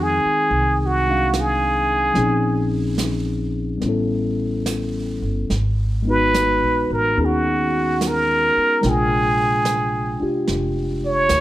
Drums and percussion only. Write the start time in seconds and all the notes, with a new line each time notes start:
0.52 brush sweep
1.33 snare, hi-hat pedal
2.15 brush sweep, snare
2.98 snare, hi-hat pedal
3.81 brush sweep, snare
4.66 snare, hi-hat pedal
5.50 brush sweep, snare
6.34 snare, hi-hat pedal
7.17 brush sweep
8.01 snare, hi-hat pedal
8.83 brush sweep, snare
9.65 snare, hi-hat pedal
10.47 brush sweep, snare
11.29 snare, hi-hat pedal